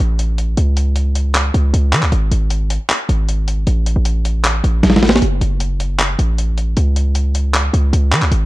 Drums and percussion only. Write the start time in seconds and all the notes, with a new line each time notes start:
0.19 closed hi-hat
0.38 closed hi-hat
0.57 closed hi-hat
0.77 closed hi-hat
0.96 closed hi-hat
1.15 closed hi-hat
1.35 clap, closed hi-hat
1.54 closed hi-hat
1.74 closed hi-hat
1.93 clap, closed hi-hat
2.02 clap
2.12 closed hi-hat
2.32 closed hi-hat
2.50 closed hi-hat
2.70 closed hi-hat
2.90 clap, closed hi-hat
3.09 closed hi-hat
3.29 closed hi-hat
3.48 closed hi-hat
3.67 closed hi-hat
3.86 closed hi-hat
4.05 closed hi-hat
4.25 closed hi-hat
4.45 clap, closed hi-hat
4.64 closed hi-hat
4.83 snare, closed hi-hat
4.90 snare
4.96 snare
5.03 snare, closed hi-hat, open hi-hat
5.08 snare, closed hi-hat
5.12 snare, closed hi-hat
5.17 closed hi-hat
5.22 closed hi-hat
5.41 closed hi-hat
5.60 closed hi-hat
5.80 closed hi-hat
5.99 clap, closed hi-hat
6.19 closed hi-hat
6.38 closed hi-hat
6.58 closed hi-hat
6.77 closed hi-hat
6.96 closed hi-hat
7.15 closed hi-hat
7.35 closed hi-hat
7.54 clap, closed hi-hat
7.74 closed hi-hat
7.93 closed hi-hat
8.12 clap, closed hi-hat
8.22 clap
8.32 closed hi-hat